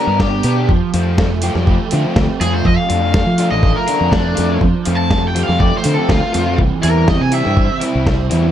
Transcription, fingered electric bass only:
0.07 G2
0.44 B2
0.70 F2
0.94 F2
1.55 F2
1.93 D3
2.16 D2
2.40 F2
2.65 F2
2.90 F2
3.26 F3
3.52 A1
4.01 F2
4.38 F2
4.61 F2
4.87 F2
5.49 F2
5.85 D3
6.09 D2
6.35 F2
6.58 C2
6.84 E2
7.21 C3
7.46 G2
7.95 C2
8.32 E2

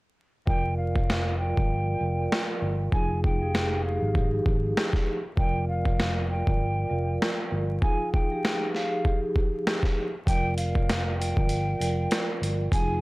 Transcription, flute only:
0.47 G5
0.77 F5
1.38 G5
2.93 G#5
3.25 G5
3.84 F5
5.38 G5
5.68 F5
6.29 G5
7.82 G#5
8.13 G5
8.74 F5
10.27 G5
10.57 F5
11.18 G5
12.72 G#5

